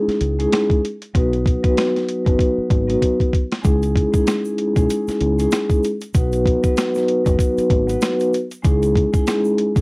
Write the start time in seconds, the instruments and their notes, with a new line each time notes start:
Already playing: vibraphone G#3 C#4 D#4 E4 G#4
0.08 muted fingered electric bass stroke, snare, closed hi-hat
0.21 fingered electric bass C#2, closed hi-hat
0.39 vibraphone G#3 C#4 D#4 E4 G#4, closed hi-hat
0.52 snare, closed hi-hat
0.70 kick, closed hi-hat
0.85 closed hi-hat
1.02 closed hi-hat
1.14 fingered electric bass B1, vibraphone F#3 B3 D#4 F#4 B4, kick, closed hi-hat
1.33 closed hi-hat
1.46 kick, closed hi-hat
1.63 vibraphone F#3 B3 D#4 F#4 B4, kick, closed hi-hat
1.77 snare, closed hi-hat
1.96 snare, closed hi-hat
2.08 closed hi-hat
2.25 fingered electric bass F#1, vibraphone F#3 B3 D#4 F#4 B4, kick, closed hi-hat
2.39 kick, closed hi-hat
2.58 muted fingered electric bass stroke
2.70 fingered electric bass G#1, kick, closed hi-hat
2.87 vibraphone F#3 B3 D#4 F#4 B4, closed hi-hat
3.02 kick, closed hi-hat
3.20 kick, closed hi-hat
3.33 kick, closed hi-hat
3.52 snare, closed hi-hat
3.62 fingered electric bass C#2, vibraphone G#3 C#4 D#4 E4 G#4, kick, closed hi-hat, shaker
3.83 closed hi-hat, shaker
3.96 kick, closed hi-hat
4.12 vibraphone G#3 C#4 D#4 E4 G#4, kick, closed hi-hat, shaker
4.27 snare, closed hi-hat, shaker
4.45 shaker
4.58 closed hi-hat
4.75 fingered electric bass B1, vibraphone G#3 C#4 D#4 E4 G#4, kick, closed hi-hat, shaker
4.90 closed hi-hat, shaker
5.08 muted fingered electric bass stroke, snare, closed hi-hat, shaker
5.21 fingered electric bass C#2, closed hi-hat
5.38 vibraphone G#3 C#4 D#4 E4 G#4, closed hi-hat, shaker
5.51 snare, closed hi-hat, shaker
5.70 kick, closed hi-hat, shaker
5.83 closed hi-hat, shaker
6.01 closed hi-hat, shaker
6.14 fingered electric bass B1, vibraphone F#3 B3 D#4 F#4 B4, kick, closed hi-hat, shaker
6.32 closed hi-hat, shaker
6.46 kick, closed hi-hat
6.63 vibraphone F#3 B3 D#4 F#4 B4, kick, closed hi-hat, shaker
6.77 snare, closed hi-hat, shaker
6.95 snare, shaker
7.08 closed hi-hat
7.25 fingered electric bass F#1, vibraphone F#3 B3 D#4 F#4 B4, kick, closed hi-hat, shaker
7.39 kick, closed hi-hat, shaker
7.58 muted fingered electric bass stroke, closed hi-hat, shaker
7.70 fingered electric bass G#1, kick, closed hi-hat
7.87 vibraphone F#3 B3 D#4 F#4 B4, closed hi-hat, shaker
8.01 snare, closed hi-hat, shaker
8.20 closed hi-hat, shaker
8.33 closed hi-hat, shaker
8.51 closed hi-hat, shaker
8.62 fingered electric bass C#2, vibraphone G#3 C#4 D#4 E4 G#4, kick, closed hi-hat, shaker
8.83 closed hi-hat, shaker
8.96 kick, closed hi-hat
9.13 vibraphone G#3 C#4 D#4 E4 G#4, kick, closed hi-hat, shaker
9.27 snare, closed hi-hat, shaker
9.45 shaker
9.58 closed hi-hat
9.75 fingered electric bass B1, vibraphone G#3 C#4 D#4 E4 G#4, kick, closed hi-hat, shaker